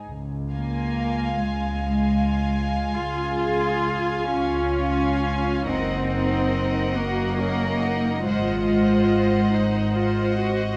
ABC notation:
X:1
M:12/8
L:1/8
Q:3/8=45
K:Db
V:1 name="Violin section"
z a3 a3 a3 a2 | g g3 g2 g g3 g2 |]
V:2 name="Violin section"
z [Ff]3 [Ff]3 [Ff]3 [Ff]2 | [Be] [Be]3 [Be]2 [ce] [ce]3 [ce]2 |]
V:3 name="Viola section"
z6 A3 F3 | E3 G D E F3 E F G |]
V:4 name="Cello section"
z B,2 A,3 F3 D3 | C3 B,3 A,4- A, z |]
V:5 name="Double bass section" clef=bass
D,,3 D,,3 D,,3 D,,3 | G,,,3 G,,,3 A,,,3 A,,,3 |]